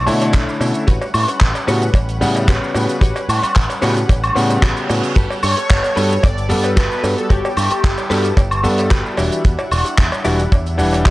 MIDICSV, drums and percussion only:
0, 0, Header, 1, 2, 480
1, 0, Start_track
1, 0, Tempo, 535714
1, 787, Time_signature, 4, 2, 24, 8
1, 9948, End_track
2, 0, Start_track
2, 0, Title_t, "Drums"
2, 63, Note_on_c, 9, 46, 112
2, 66, Note_on_c, 9, 82, 82
2, 153, Note_off_c, 9, 46, 0
2, 156, Note_off_c, 9, 82, 0
2, 189, Note_on_c, 9, 82, 49
2, 193, Note_on_c, 9, 42, 62
2, 195, Note_on_c, 9, 56, 69
2, 279, Note_off_c, 9, 82, 0
2, 283, Note_off_c, 9, 42, 0
2, 285, Note_off_c, 9, 56, 0
2, 297, Note_on_c, 9, 42, 94
2, 305, Note_on_c, 9, 36, 110
2, 307, Note_on_c, 9, 39, 117
2, 307, Note_on_c, 9, 82, 68
2, 386, Note_off_c, 9, 42, 0
2, 395, Note_off_c, 9, 36, 0
2, 397, Note_off_c, 9, 39, 0
2, 397, Note_off_c, 9, 82, 0
2, 437, Note_on_c, 9, 82, 44
2, 526, Note_off_c, 9, 82, 0
2, 544, Note_on_c, 9, 56, 89
2, 547, Note_on_c, 9, 46, 87
2, 551, Note_on_c, 9, 82, 85
2, 634, Note_off_c, 9, 56, 0
2, 636, Note_off_c, 9, 46, 0
2, 640, Note_off_c, 9, 82, 0
2, 665, Note_on_c, 9, 42, 68
2, 670, Note_on_c, 9, 82, 54
2, 755, Note_off_c, 9, 42, 0
2, 760, Note_off_c, 9, 82, 0
2, 785, Note_on_c, 9, 42, 86
2, 788, Note_on_c, 9, 36, 97
2, 796, Note_on_c, 9, 82, 58
2, 874, Note_off_c, 9, 42, 0
2, 877, Note_off_c, 9, 36, 0
2, 885, Note_off_c, 9, 82, 0
2, 909, Note_on_c, 9, 56, 80
2, 912, Note_on_c, 9, 82, 44
2, 999, Note_off_c, 9, 56, 0
2, 1002, Note_off_c, 9, 82, 0
2, 1021, Note_on_c, 9, 76, 83
2, 1023, Note_on_c, 9, 46, 109
2, 1023, Note_on_c, 9, 82, 94
2, 1110, Note_off_c, 9, 76, 0
2, 1112, Note_off_c, 9, 46, 0
2, 1113, Note_off_c, 9, 82, 0
2, 1150, Note_on_c, 9, 42, 73
2, 1152, Note_on_c, 9, 82, 50
2, 1239, Note_off_c, 9, 42, 0
2, 1241, Note_off_c, 9, 82, 0
2, 1258, Note_on_c, 9, 39, 118
2, 1266, Note_on_c, 9, 36, 114
2, 1268, Note_on_c, 9, 82, 58
2, 1269, Note_on_c, 9, 42, 90
2, 1347, Note_off_c, 9, 39, 0
2, 1355, Note_off_c, 9, 36, 0
2, 1357, Note_off_c, 9, 82, 0
2, 1359, Note_off_c, 9, 42, 0
2, 1390, Note_on_c, 9, 42, 59
2, 1391, Note_on_c, 9, 56, 63
2, 1394, Note_on_c, 9, 82, 46
2, 1480, Note_off_c, 9, 42, 0
2, 1480, Note_off_c, 9, 56, 0
2, 1484, Note_off_c, 9, 82, 0
2, 1506, Note_on_c, 9, 82, 84
2, 1508, Note_on_c, 9, 46, 99
2, 1596, Note_off_c, 9, 82, 0
2, 1598, Note_off_c, 9, 46, 0
2, 1629, Note_on_c, 9, 42, 67
2, 1635, Note_on_c, 9, 82, 57
2, 1719, Note_off_c, 9, 42, 0
2, 1724, Note_off_c, 9, 82, 0
2, 1736, Note_on_c, 9, 36, 109
2, 1743, Note_on_c, 9, 42, 91
2, 1744, Note_on_c, 9, 82, 59
2, 1746, Note_on_c, 9, 56, 91
2, 1826, Note_off_c, 9, 36, 0
2, 1833, Note_off_c, 9, 42, 0
2, 1834, Note_off_c, 9, 82, 0
2, 1836, Note_off_c, 9, 56, 0
2, 1871, Note_on_c, 9, 42, 61
2, 1879, Note_on_c, 9, 82, 41
2, 1960, Note_off_c, 9, 42, 0
2, 1969, Note_off_c, 9, 82, 0
2, 1983, Note_on_c, 9, 46, 106
2, 1991, Note_on_c, 9, 82, 90
2, 2073, Note_off_c, 9, 46, 0
2, 2081, Note_off_c, 9, 82, 0
2, 2103, Note_on_c, 9, 42, 72
2, 2113, Note_on_c, 9, 56, 68
2, 2117, Note_on_c, 9, 82, 55
2, 2193, Note_off_c, 9, 42, 0
2, 2203, Note_off_c, 9, 56, 0
2, 2207, Note_off_c, 9, 82, 0
2, 2222, Note_on_c, 9, 42, 95
2, 2223, Note_on_c, 9, 36, 114
2, 2225, Note_on_c, 9, 82, 66
2, 2228, Note_on_c, 9, 39, 120
2, 2312, Note_off_c, 9, 36, 0
2, 2312, Note_off_c, 9, 42, 0
2, 2314, Note_off_c, 9, 82, 0
2, 2318, Note_off_c, 9, 39, 0
2, 2361, Note_on_c, 9, 82, 38
2, 2451, Note_off_c, 9, 82, 0
2, 2460, Note_on_c, 9, 56, 90
2, 2467, Note_on_c, 9, 46, 87
2, 2471, Note_on_c, 9, 82, 83
2, 2550, Note_off_c, 9, 56, 0
2, 2556, Note_off_c, 9, 46, 0
2, 2561, Note_off_c, 9, 82, 0
2, 2592, Note_on_c, 9, 82, 54
2, 2594, Note_on_c, 9, 42, 62
2, 2682, Note_off_c, 9, 82, 0
2, 2683, Note_off_c, 9, 42, 0
2, 2700, Note_on_c, 9, 36, 103
2, 2711, Note_on_c, 9, 82, 59
2, 2712, Note_on_c, 9, 42, 99
2, 2790, Note_off_c, 9, 36, 0
2, 2801, Note_off_c, 9, 82, 0
2, 2802, Note_off_c, 9, 42, 0
2, 2830, Note_on_c, 9, 56, 88
2, 2835, Note_on_c, 9, 42, 57
2, 2837, Note_on_c, 9, 82, 38
2, 2920, Note_off_c, 9, 56, 0
2, 2925, Note_off_c, 9, 42, 0
2, 2927, Note_off_c, 9, 82, 0
2, 2950, Note_on_c, 9, 46, 101
2, 2952, Note_on_c, 9, 76, 73
2, 2953, Note_on_c, 9, 82, 96
2, 3039, Note_off_c, 9, 46, 0
2, 3042, Note_off_c, 9, 76, 0
2, 3042, Note_off_c, 9, 82, 0
2, 3077, Note_on_c, 9, 42, 77
2, 3078, Note_on_c, 9, 76, 63
2, 3083, Note_on_c, 9, 82, 52
2, 3167, Note_off_c, 9, 42, 0
2, 3167, Note_off_c, 9, 76, 0
2, 3173, Note_off_c, 9, 82, 0
2, 3183, Note_on_c, 9, 42, 100
2, 3185, Note_on_c, 9, 39, 121
2, 3192, Note_on_c, 9, 36, 119
2, 3192, Note_on_c, 9, 82, 59
2, 3273, Note_off_c, 9, 42, 0
2, 3275, Note_off_c, 9, 39, 0
2, 3282, Note_off_c, 9, 36, 0
2, 3282, Note_off_c, 9, 82, 0
2, 3312, Note_on_c, 9, 56, 60
2, 3315, Note_on_c, 9, 42, 57
2, 3323, Note_on_c, 9, 82, 43
2, 3401, Note_off_c, 9, 56, 0
2, 3404, Note_off_c, 9, 42, 0
2, 3413, Note_off_c, 9, 82, 0
2, 3425, Note_on_c, 9, 82, 94
2, 3427, Note_on_c, 9, 46, 101
2, 3432, Note_on_c, 9, 39, 58
2, 3514, Note_off_c, 9, 82, 0
2, 3517, Note_off_c, 9, 46, 0
2, 3522, Note_off_c, 9, 39, 0
2, 3554, Note_on_c, 9, 42, 72
2, 3558, Note_on_c, 9, 82, 56
2, 3643, Note_off_c, 9, 42, 0
2, 3648, Note_off_c, 9, 82, 0
2, 3668, Note_on_c, 9, 36, 110
2, 3668, Note_on_c, 9, 56, 83
2, 3672, Note_on_c, 9, 42, 93
2, 3676, Note_on_c, 9, 82, 60
2, 3757, Note_off_c, 9, 36, 0
2, 3758, Note_off_c, 9, 56, 0
2, 3761, Note_off_c, 9, 42, 0
2, 3766, Note_off_c, 9, 82, 0
2, 3793, Note_on_c, 9, 82, 41
2, 3795, Note_on_c, 9, 76, 86
2, 3798, Note_on_c, 9, 42, 54
2, 3882, Note_off_c, 9, 82, 0
2, 3885, Note_off_c, 9, 76, 0
2, 3887, Note_off_c, 9, 42, 0
2, 3908, Note_on_c, 9, 46, 103
2, 3922, Note_on_c, 9, 82, 84
2, 3998, Note_off_c, 9, 46, 0
2, 4012, Note_off_c, 9, 82, 0
2, 4032, Note_on_c, 9, 56, 64
2, 4033, Note_on_c, 9, 82, 54
2, 4037, Note_on_c, 9, 42, 67
2, 4121, Note_off_c, 9, 56, 0
2, 4122, Note_off_c, 9, 82, 0
2, 4126, Note_off_c, 9, 42, 0
2, 4144, Note_on_c, 9, 36, 110
2, 4147, Note_on_c, 9, 82, 58
2, 4148, Note_on_c, 9, 42, 97
2, 4149, Note_on_c, 9, 39, 113
2, 4233, Note_off_c, 9, 36, 0
2, 4236, Note_off_c, 9, 82, 0
2, 4238, Note_off_c, 9, 42, 0
2, 4239, Note_off_c, 9, 39, 0
2, 4272, Note_on_c, 9, 42, 49
2, 4274, Note_on_c, 9, 82, 41
2, 4362, Note_off_c, 9, 42, 0
2, 4364, Note_off_c, 9, 82, 0
2, 4385, Note_on_c, 9, 46, 92
2, 4386, Note_on_c, 9, 56, 99
2, 4394, Note_on_c, 9, 82, 91
2, 4475, Note_off_c, 9, 46, 0
2, 4476, Note_off_c, 9, 56, 0
2, 4484, Note_off_c, 9, 82, 0
2, 4513, Note_on_c, 9, 42, 71
2, 4519, Note_on_c, 9, 82, 57
2, 4603, Note_off_c, 9, 42, 0
2, 4608, Note_off_c, 9, 82, 0
2, 4625, Note_on_c, 9, 36, 121
2, 4626, Note_on_c, 9, 49, 73
2, 4627, Note_on_c, 9, 42, 83
2, 4631, Note_on_c, 9, 82, 58
2, 4714, Note_off_c, 9, 36, 0
2, 4716, Note_off_c, 9, 49, 0
2, 4717, Note_off_c, 9, 42, 0
2, 4720, Note_off_c, 9, 82, 0
2, 4752, Note_on_c, 9, 56, 91
2, 4764, Note_on_c, 9, 82, 39
2, 4842, Note_off_c, 9, 56, 0
2, 4853, Note_off_c, 9, 82, 0
2, 4863, Note_on_c, 9, 76, 73
2, 4865, Note_on_c, 9, 82, 80
2, 4870, Note_on_c, 9, 46, 116
2, 4953, Note_off_c, 9, 76, 0
2, 4954, Note_off_c, 9, 82, 0
2, 4960, Note_off_c, 9, 46, 0
2, 4993, Note_on_c, 9, 42, 65
2, 5006, Note_on_c, 9, 82, 52
2, 5083, Note_off_c, 9, 42, 0
2, 5096, Note_off_c, 9, 82, 0
2, 5108, Note_on_c, 9, 42, 90
2, 5111, Note_on_c, 9, 36, 120
2, 5111, Note_on_c, 9, 39, 119
2, 5117, Note_on_c, 9, 82, 62
2, 5198, Note_off_c, 9, 42, 0
2, 5200, Note_off_c, 9, 36, 0
2, 5201, Note_off_c, 9, 39, 0
2, 5207, Note_off_c, 9, 82, 0
2, 5227, Note_on_c, 9, 56, 65
2, 5234, Note_on_c, 9, 42, 61
2, 5239, Note_on_c, 9, 82, 42
2, 5316, Note_off_c, 9, 56, 0
2, 5324, Note_off_c, 9, 42, 0
2, 5329, Note_off_c, 9, 82, 0
2, 5349, Note_on_c, 9, 46, 106
2, 5350, Note_on_c, 9, 82, 80
2, 5439, Note_off_c, 9, 46, 0
2, 5439, Note_off_c, 9, 82, 0
2, 5476, Note_on_c, 9, 42, 70
2, 5487, Note_on_c, 9, 82, 53
2, 5565, Note_off_c, 9, 42, 0
2, 5576, Note_off_c, 9, 82, 0
2, 5584, Note_on_c, 9, 56, 98
2, 5587, Note_on_c, 9, 82, 62
2, 5588, Note_on_c, 9, 36, 117
2, 5597, Note_on_c, 9, 42, 96
2, 5674, Note_off_c, 9, 56, 0
2, 5677, Note_off_c, 9, 82, 0
2, 5678, Note_off_c, 9, 36, 0
2, 5687, Note_off_c, 9, 42, 0
2, 5716, Note_on_c, 9, 42, 51
2, 5716, Note_on_c, 9, 82, 45
2, 5806, Note_off_c, 9, 42, 0
2, 5806, Note_off_c, 9, 82, 0
2, 5820, Note_on_c, 9, 46, 107
2, 5830, Note_on_c, 9, 82, 86
2, 5909, Note_off_c, 9, 46, 0
2, 5919, Note_off_c, 9, 82, 0
2, 5948, Note_on_c, 9, 56, 66
2, 5950, Note_on_c, 9, 42, 69
2, 5953, Note_on_c, 9, 82, 50
2, 6038, Note_off_c, 9, 56, 0
2, 6040, Note_off_c, 9, 42, 0
2, 6042, Note_off_c, 9, 82, 0
2, 6064, Note_on_c, 9, 82, 62
2, 6066, Note_on_c, 9, 36, 127
2, 6068, Note_on_c, 9, 42, 85
2, 6074, Note_on_c, 9, 39, 127
2, 6153, Note_off_c, 9, 82, 0
2, 6155, Note_off_c, 9, 36, 0
2, 6157, Note_off_c, 9, 42, 0
2, 6164, Note_off_c, 9, 39, 0
2, 6198, Note_on_c, 9, 82, 36
2, 6287, Note_off_c, 9, 82, 0
2, 6305, Note_on_c, 9, 56, 83
2, 6306, Note_on_c, 9, 46, 88
2, 6306, Note_on_c, 9, 82, 81
2, 6395, Note_off_c, 9, 46, 0
2, 6395, Note_off_c, 9, 56, 0
2, 6395, Note_off_c, 9, 82, 0
2, 6435, Note_on_c, 9, 42, 69
2, 6441, Note_on_c, 9, 82, 47
2, 6525, Note_off_c, 9, 42, 0
2, 6531, Note_off_c, 9, 82, 0
2, 6543, Note_on_c, 9, 36, 110
2, 6544, Note_on_c, 9, 42, 96
2, 6545, Note_on_c, 9, 82, 52
2, 6633, Note_off_c, 9, 36, 0
2, 6634, Note_off_c, 9, 42, 0
2, 6634, Note_off_c, 9, 82, 0
2, 6675, Note_on_c, 9, 56, 100
2, 6678, Note_on_c, 9, 82, 42
2, 6764, Note_off_c, 9, 56, 0
2, 6768, Note_off_c, 9, 82, 0
2, 6780, Note_on_c, 9, 46, 114
2, 6783, Note_on_c, 9, 76, 72
2, 6792, Note_on_c, 9, 82, 84
2, 6870, Note_off_c, 9, 46, 0
2, 6872, Note_off_c, 9, 76, 0
2, 6882, Note_off_c, 9, 82, 0
2, 6907, Note_on_c, 9, 42, 68
2, 6908, Note_on_c, 9, 82, 50
2, 6915, Note_on_c, 9, 76, 56
2, 6996, Note_off_c, 9, 42, 0
2, 6997, Note_off_c, 9, 82, 0
2, 7004, Note_off_c, 9, 76, 0
2, 7022, Note_on_c, 9, 42, 85
2, 7025, Note_on_c, 9, 36, 121
2, 7030, Note_on_c, 9, 82, 57
2, 7031, Note_on_c, 9, 39, 125
2, 7111, Note_off_c, 9, 42, 0
2, 7114, Note_off_c, 9, 36, 0
2, 7120, Note_off_c, 9, 82, 0
2, 7121, Note_off_c, 9, 39, 0
2, 7147, Note_on_c, 9, 42, 59
2, 7151, Note_on_c, 9, 56, 65
2, 7152, Note_on_c, 9, 82, 48
2, 7236, Note_off_c, 9, 42, 0
2, 7241, Note_off_c, 9, 56, 0
2, 7241, Note_off_c, 9, 82, 0
2, 7266, Note_on_c, 9, 46, 102
2, 7267, Note_on_c, 9, 82, 87
2, 7273, Note_on_c, 9, 39, 60
2, 7355, Note_off_c, 9, 46, 0
2, 7357, Note_off_c, 9, 82, 0
2, 7363, Note_off_c, 9, 39, 0
2, 7389, Note_on_c, 9, 42, 72
2, 7394, Note_on_c, 9, 82, 53
2, 7478, Note_off_c, 9, 42, 0
2, 7484, Note_off_c, 9, 82, 0
2, 7500, Note_on_c, 9, 36, 127
2, 7501, Note_on_c, 9, 56, 106
2, 7504, Note_on_c, 9, 42, 91
2, 7508, Note_on_c, 9, 82, 62
2, 7589, Note_off_c, 9, 36, 0
2, 7590, Note_off_c, 9, 56, 0
2, 7593, Note_off_c, 9, 42, 0
2, 7597, Note_off_c, 9, 82, 0
2, 7627, Note_on_c, 9, 76, 80
2, 7630, Note_on_c, 9, 42, 57
2, 7635, Note_on_c, 9, 82, 47
2, 7716, Note_off_c, 9, 76, 0
2, 7720, Note_off_c, 9, 42, 0
2, 7725, Note_off_c, 9, 82, 0
2, 7742, Note_on_c, 9, 46, 103
2, 7745, Note_on_c, 9, 82, 86
2, 7831, Note_off_c, 9, 46, 0
2, 7835, Note_off_c, 9, 82, 0
2, 7867, Note_on_c, 9, 42, 70
2, 7875, Note_on_c, 9, 82, 46
2, 7876, Note_on_c, 9, 56, 63
2, 7957, Note_off_c, 9, 42, 0
2, 7965, Note_off_c, 9, 56, 0
2, 7965, Note_off_c, 9, 82, 0
2, 7984, Note_on_c, 9, 36, 127
2, 7984, Note_on_c, 9, 39, 127
2, 7984, Note_on_c, 9, 42, 92
2, 7989, Note_on_c, 9, 82, 57
2, 8073, Note_off_c, 9, 39, 0
2, 8073, Note_off_c, 9, 42, 0
2, 8074, Note_off_c, 9, 36, 0
2, 8078, Note_off_c, 9, 82, 0
2, 8116, Note_on_c, 9, 82, 37
2, 8205, Note_off_c, 9, 82, 0
2, 8219, Note_on_c, 9, 46, 101
2, 8221, Note_on_c, 9, 56, 101
2, 8229, Note_on_c, 9, 82, 84
2, 8309, Note_off_c, 9, 46, 0
2, 8311, Note_off_c, 9, 56, 0
2, 8319, Note_off_c, 9, 82, 0
2, 8351, Note_on_c, 9, 82, 49
2, 8353, Note_on_c, 9, 42, 68
2, 8441, Note_off_c, 9, 82, 0
2, 8443, Note_off_c, 9, 42, 0
2, 8463, Note_on_c, 9, 82, 59
2, 8466, Note_on_c, 9, 36, 120
2, 8468, Note_on_c, 9, 42, 84
2, 8553, Note_off_c, 9, 82, 0
2, 8555, Note_off_c, 9, 36, 0
2, 8557, Note_off_c, 9, 42, 0
2, 8589, Note_on_c, 9, 56, 112
2, 8595, Note_on_c, 9, 82, 40
2, 8679, Note_off_c, 9, 56, 0
2, 8684, Note_off_c, 9, 82, 0
2, 8703, Note_on_c, 9, 46, 108
2, 8705, Note_on_c, 9, 76, 75
2, 8712, Note_on_c, 9, 82, 82
2, 8792, Note_off_c, 9, 46, 0
2, 8795, Note_off_c, 9, 76, 0
2, 8802, Note_off_c, 9, 82, 0
2, 8833, Note_on_c, 9, 82, 50
2, 8834, Note_on_c, 9, 42, 62
2, 8923, Note_off_c, 9, 42, 0
2, 8923, Note_off_c, 9, 82, 0
2, 8944, Note_on_c, 9, 36, 111
2, 8945, Note_on_c, 9, 39, 127
2, 8948, Note_on_c, 9, 42, 83
2, 8948, Note_on_c, 9, 82, 55
2, 9033, Note_off_c, 9, 36, 0
2, 9034, Note_off_c, 9, 39, 0
2, 9037, Note_off_c, 9, 42, 0
2, 9038, Note_off_c, 9, 82, 0
2, 9068, Note_on_c, 9, 56, 79
2, 9069, Note_on_c, 9, 42, 51
2, 9084, Note_on_c, 9, 82, 44
2, 9158, Note_off_c, 9, 56, 0
2, 9159, Note_off_c, 9, 42, 0
2, 9174, Note_off_c, 9, 82, 0
2, 9181, Note_on_c, 9, 82, 84
2, 9182, Note_on_c, 9, 46, 101
2, 9271, Note_off_c, 9, 82, 0
2, 9272, Note_off_c, 9, 46, 0
2, 9311, Note_on_c, 9, 82, 47
2, 9315, Note_on_c, 9, 42, 67
2, 9400, Note_off_c, 9, 82, 0
2, 9405, Note_off_c, 9, 42, 0
2, 9426, Note_on_c, 9, 36, 127
2, 9427, Note_on_c, 9, 42, 80
2, 9428, Note_on_c, 9, 56, 103
2, 9430, Note_on_c, 9, 82, 63
2, 9516, Note_off_c, 9, 36, 0
2, 9516, Note_off_c, 9, 42, 0
2, 9517, Note_off_c, 9, 56, 0
2, 9519, Note_off_c, 9, 82, 0
2, 9553, Note_on_c, 9, 82, 41
2, 9557, Note_on_c, 9, 42, 59
2, 9642, Note_off_c, 9, 82, 0
2, 9647, Note_off_c, 9, 42, 0
2, 9664, Note_on_c, 9, 46, 116
2, 9669, Note_on_c, 9, 82, 85
2, 9754, Note_off_c, 9, 46, 0
2, 9759, Note_off_c, 9, 82, 0
2, 9790, Note_on_c, 9, 56, 73
2, 9801, Note_on_c, 9, 82, 52
2, 9802, Note_on_c, 9, 42, 66
2, 9880, Note_off_c, 9, 56, 0
2, 9890, Note_off_c, 9, 82, 0
2, 9892, Note_off_c, 9, 42, 0
2, 9905, Note_on_c, 9, 42, 94
2, 9907, Note_on_c, 9, 36, 123
2, 9908, Note_on_c, 9, 39, 114
2, 9911, Note_on_c, 9, 82, 68
2, 9948, Note_off_c, 9, 36, 0
2, 9948, Note_off_c, 9, 39, 0
2, 9948, Note_off_c, 9, 42, 0
2, 9948, Note_off_c, 9, 82, 0
2, 9948, End_track
0, 0, End_of_file